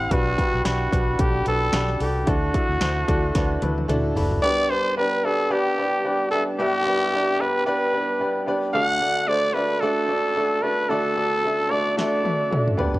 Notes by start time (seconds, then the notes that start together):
Already playing: C4 E4 G4 C5 F#5
0.10 B1 B2 D4 F#4 G4 B4 D5 F#5 B5, kick, closed hi-hat
0.37 D4 F#4 G4 B4, kick, closed hi-hat
0.54 B1
0.64 B1 D4 F#4 G4 B4, snare, closed hi-hat
0.90 B1 D4 F#4 G4 B4, kick, closed hi-hat
1.18 B1 D4 F#4 G4 A4, kick, closed hi-hat
1.46 B1 D4 F#4 G4 A4 B4, closed hi-hat
1.73 B1 D4 F#4 G4 A4, snare, closed hi-hat
1.88 snare
2.00 C2 D4 F#4 G4 A4, open hi-hat
2.26 D2 D3 D4 E4 F#4 A4 E5 A5, kick, closed hi-hat
2.53 D4 E4 F#4 A4, kick, closed hi-hat
2.69 D2
2.80 D2 D4 E4 F#4 C5, snare, closed hi-hat
3.07 D2 D4 E4 F#4 A4 D5, kick, closed hi-hat
3.34 D2 D4 E4 F#4 B4 F#5, kick, snare, closed hi-hat
3.61 D2 D4 E4 F#4 B4, closed hi-hat, high tom
3.78 high tom
3.88 D2 D4 E4 F#4 A4 A5, closed hi-hat, mid tom
4.15 F#1 D4 E4 F#4 A4 B5, floor tom, open hi-hat
4.31 floor tom
4.42 G2 B3 D4 G4 B4 D5
4.69 B3 D4 G4 B4 C5 D5
4.97 B3 D4 G4 B4 D5
5.24 B3 D4 G4 A4 B4 D5
5.50 B3 D4 G4 B4 D5
5.78 B3 D4 G4 B4 D5
6.04 B3 D4 G4 B4 D5
6.31 B3 D4 G4 A4 B4 E5
6.59 G2 B3 D4 G4 B4 E5
6.86 B3 D4 G4 B4 D5
7.13 B3 D4 G4 B4 D5
7.38 B3 D4 G4 B4 D5
7.65 B3 D4 G4 B4 D5
7.93 B3 D4 G4 B4 D5
8.20 B3 D4 G4 B4 D5
8.46 B3 D4 G4 B4 D5
8.73 D3 A3 D4 F#4 A4 D5 F#5
9.01 A3 D4 F#4 A4 D5
9.27 A3 D4 F#4 A4 C5 D5
9.54 A3 D4 F#4 A4 B4 D5
9.80 A3 D4 F#4 A4 D5
10.08 A3 D4 F#4 A4 D5
10.36 A3 D4 F#4 A4 D5
10.62 A3 D4 F#4 A4 B4 D5
10.89 D3 A3 D4 F#4 A4 D5
11.16 A3 D4 F#4 A4 D5
11.43 A3 D4 F#4 A4 E5
11.70 A3 D4 F#4 A4 D5
11.97 A3 D4 F#4 A4 D5 E5, snare
12.23 A3 D4 F#4 A4 D5, high tom
12.51 A3 D4 F#4 A4 D5, mid tom
12.68 mid tom
12.77 D3 B3 D4 G4 B4 D5, floor tom
12.94 floor tom